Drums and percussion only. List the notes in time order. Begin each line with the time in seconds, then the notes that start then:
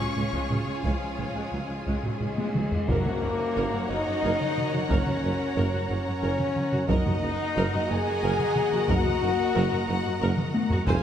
0.16 taiko low-mid
0.33 taiko
0.50 taiko low-mid
0.84 taiko
1.19 taiko low-mid
1.86 taiko
2.03 taiko low-mid
2.21 taiko low-mid
2.38 taiko high
2.55 taiko mid
2.72 taiko low
2.88 taiko, tam-tam
3.06 taiko mid
4.41 taiko mid
4.58 taiko mid
4.74 taiko mid
4.90 taiko
5.07 taiko mid
6.39 taiko mid
6.56 taiko mid
6.73 taiko mid
6.89 taiko
7.06 taiko mid
8.39 taiko mid
8.56 taiko mid
8.72 taiko mid
8.89 taiko
9.06 taiko mid
10.37 taiko mid
10.54 taiko high
10.71 taiko low
10.87 taiko